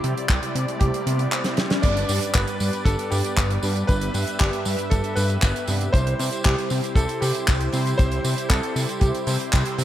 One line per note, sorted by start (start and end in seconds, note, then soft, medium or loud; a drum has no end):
0.00 1.04 C3 medium
0.00 0.14 C3 medium
0.00 1.04 G3 medium
0.00 1.04 C4 medium
0.00 1.04 E4 medium
0.00 1.80 E4 medium
0.00 0.78 G4 loud
0.00 1.80 G4 medium
0.00 1.04 C5 medium
0.00 1.82 D5 medium
0.00 closed hi-hat medium
0.00 riser medium
0.17 closed hi-hat medium
0.29 0.40 C2 medium
0.29 kick loud
0.29 clap loud
0.29 closed hi-hat medium
0.43 closed hi-hat medium
0.55 0.66 C3 medium
0.55 closed hi-hat medium
0.68 closed hi-hat medium
0.79 0.91 C2 medium
0.79 1.53 G4 medium
0.79 kick loud
0.79 closed hi-hat medium
0.94 closed hi-hat medium
1.07 1.27 C3 medium
1.07 1.29 C3 medium
1.07 1.29 G3 medium
1.07 1.29 C4 medium
1.07 1.29 E4 medium
1.07 1.29 C5 loud
1.07 closed hi-hat medium
1.19 closed hi-hat medium
1.32 1.42 C3 medium
1.32 1.42 G3 medium
1.32 1.42 C4 medium
1.32 1.42 E4 medium
1.32 1.42 C5 medium
1.32 clap loud
1.32 closed hi-hat medium
1.44 1.80 C3 medium
1.44 1.80 G3 medium
1.44 1.80 C4 medium
1.44 1.80 E4 medium
1.44 1.80 C5 medium
1.44 snare medium
1.44 closed hi-hat medium
1.57 snare medium
1.57 closed hi-hat medium
1.70 snare medium
1.70 closed hi-hat medium
1.82 2.04 G1 loud
1.82 3.60 G2 medium
1.82 3.60 G3 medium
1.82 5.90 G3 medium
1.82 3.60 B3 medium
1.82 3.60 D4 medium
1.82 9.84 G4 medium
1.82 3.60 B4 medium
1.82 5.90 B4 medium
1.82 2.36 D5 loud
1.82 3.87 D5 medium
1.82 kick loud
1.82 closed hi-hat medium
1.82 crash loud
1.82 tambourine soft
1.97 closed hi-hat medium
1.97 tambourine soft
2.09 2.20 G2 loud
2.09 open hi-hat loud
2.09 tambourine medium
2.22 closed hi-hat medium
2.22 tambourine soft
2.33 2.45 G1 medium
2.33 2.87 B4 medium
2.33 kick loud
2.33 clap loud
2.33 closed hi-hat medium
2.33 tambourine soft
2.47 closed hi-hat medium
2.47 tambourine soft
2.60 2.71 G2 medium
2.60 open hi-hat loud
2.60 tambourine medium
2.73 closed hi-hat medium
2.73 tambourine soft
2.85 2.96 G1 medium
2.85 3.09 A4 medium
2.85 kick loud
2.85 closed hi-hat medium
2.85 tambourine soft
2.99 closed hi-hat medium
2.99 tambourine soft
3.10 3.22 G2 loud
3.10 3.59 G4 medium
3.10 open hi-hat loud
3.10 tambourine medium
3.24 closed hi-hat medium
3.24 tambourine soft
3.37 3.58 G1 loud
3.37 kick loud
3.37 clap loud
3.37 closed hi-hat medium
3.37 tambourine soft
3.50 closed hi-hat medium
3.50 tambourine soft
3.63 3.84 G2 medium
3.63 3.86 G2 medium
3.63 3.86 G3 medium
3.63 3.86 B3 medium
3.63 3.86 D4 medium
3.63 3.86 B4 loud
3.63 open hi-hat medium
3.63 tambourine medium
3.76 closed hi-hat soft
3.76 tambourine soft
3.87 4.10 G1 loud
3.87 5.65 G2 medium
3.87 5.65 G3 medium
3.87 5.65 B3 medium
3.87 5.65 D4 medium
3.87 4.36 B4 loud
3.87 5.65 B4 medium
3.87 5.92 E5 medium
3.87 kick loud
3.87 closed hi-hat medium
3.87 tambourine soft
4.01 closed hi-hat medium
4.01 tambourine soft
4.14 4.25 G2 loud
4.14 open hi-hat loud
4.14 tambourine medium
4.27 closed hi-hat medium
4.27 tambourine soft
4.39 4.51 G1 medium
4.39 4.92 G4 medium
4.39 kick loud
4.39 clap loud
4.39 closed hi-hat medium
4.39 tambourine soft
4.53 closed hi-hat medium
4.53 tambourine soft
4.65 4.76 G2 medium
4.65 open hi-hat loud
4.65 tambourine medium
4.78 closed hi-hat medium
4.78 tambourine soft
4.90 5.02 G1 medium
4.90 5.17 A4 medium
4.90 kick loud
4.90 closed hi-hat medium
4.90 tambourine soft
5.04 closed hi-hat medium
5.04 tambourine soft
5.16 5.38 G2 medium
5.16 5.64 B4 medium
5.16 open hi-hat loud
5.16 tambourine medium
5.30 closed hi-hat medium
5.30 tambourine soft
5.42 5.53 G1 medium
5.42 kick loud
5.42 clap loud
5.42 closed hi-hat medium
5.42 tambourine soft
5.56 closed hi-hat medium
5.56 tambourine soft
5.67 5.89 G2 medium
5.67 5.91 C3 medium
5.67 5.91 G3 medium
5.67 5.91 B3 medium
5.67 5.91 D4 medium
5.67 5.91 B4 loud
5.67 open hi-hat medium
5.67 tambourine medium
5.81 closed hi-hat medium
5.81 tambourine soft
5.93 6.14 C2 loud
5.93 7.70 C3 medium
5.93 7.70 G3 medium
5.93 7.70 C4 medium
5.93 9.84 E4 medium
5.93 7.70 E4 medium
5.93 6.46 C5 loud
5.93 7.70 C5 medium
5.93 9.84 C5 medium
5.93 kick loud
5.93 closed hi-hat medium
5.93 tambourine soft
6.07 closed hi-hat medium
6.07 tambourine soft
6.19 6.30 C3 loud
6.19 open hi-hat loud
6.19 tambourine medium
6.32 closed hi-hat medium
6.32 tambourine soft
6.44 6.56 C2 medium
6.44 6.97 G4 medium
6.44 kick loud
6.44 clap loud
6.44 closed hi-hat medium
6.58 closed hi-hat medium
6.58 tambourine soft
6.70 6.81 C3 medium
6.70 open hi-hat medium
6.70 tambourine medium
6.84 closed hi-hat medium
6.84 tambourine soft
6.95 7.06 C2 loud
6.95 7.22 A4 medium
6.95 kick loud
6.95 closed hi-hat medium
6.95 tambourine soft
7.09 closed hi-hat medium
7.09 tambourine soft
7.21 7.32 C3 loud
7.21 7.69 G4 medium
7.21 open hi-hat loud
7.21 tambourine medium
7.35 closed hi-hat medium
7.35 tambourine soft
7.47 7.69 C2 loud
7.47 kick loud
7.47 clap loud
7.47 closed hi-hat medium
7.47 tambourine soft
7.60 closed hi-hat medium
7.60 tambourine soft
7.73 7.94 C3 medium
7.73 7.96 C3 loud
7.73 7.96 G3 medium
7.73 7.96 C4 medium
7.73 7.96 E4 medium
7.73 7.96 C5 loud
7.73 open hi-hat loud
7.73 tambourine medium
7.87 closed hi-hat medium
7.87 tambourine soft
7.98 8.20 C2 loud
7.98 9.25 C3 medium
7.98 9.25 G3 medium
7.98 9.25 C4 medium
7.98 9.25 E4 medium
7.98 8.51 C5 loud
7.98 9.25 C5 medium
7.98 kick loud
7.98 closed hi-hat medium
7.98 tambourine soft
8.12 closed hi-hat medium
8.12 tambourine soft
8.24 8.35 C3 loud
8.24 open hi-hat loud
8.24 tambourine medium
8.38 closed hi-hat medium
8.38 tambourine soft
8.49 8.60 C2 loud
8.49 9.02 A4 loud
8.49 kick loud
8.49 clap loud
8.49 closed hi-hat medium
8.49 tambourine soft
8.63 closed hi-hat medium
8.63 tambourine soft
8.76 8.86 C3 medium
8.76 open hi-hat loud
8.76 tambourine medium
8.89 closed hi-hat medium
8.89 tambourine soft
9.00 9.12 C2 loud
9.00 9.74 G4 medium
9.00 kick loud
9.00 closed hi-hat medium
9.00 tambourine soft
9.14 closed hi-hat medium
9.14 tambourine soft
9.27 9.37 C3 loud
9.27 9.50 C3 medium
9.27 9.50 G3 medium
9.27 9.50 C4 medium
9.27 9.50 E4 medium
9.27 9.50 C5 loud
9.27 open hi-hat loud
9.27 tambourine medium
9.40 closed hi-hat medium
9.40 tambourine soft
9.53 9.64 C2 loud
9.53 9.63 C3 medium
9.53 9.63 G3 medium
9.53 9.63 C4 medium
9.53 9.63 E4 medium
9.53 9.63 C5 medium
9.53 kick loud
9.53 clap loud
9.53 closed hi-hat medium
9.53 tambourine soft
9.65 9.84 C3 medium
9.65 9.84 G3 medium
9.65 9.84 C4 medium
9.65 9.84 E4 medium
9.65 9.84 C5 medium
9.65 closed hi-hat medium
9.65 tambourine soft
9.78 9.84 C3 loud
9.78 open hi-hat loud
9.78 tambourine medium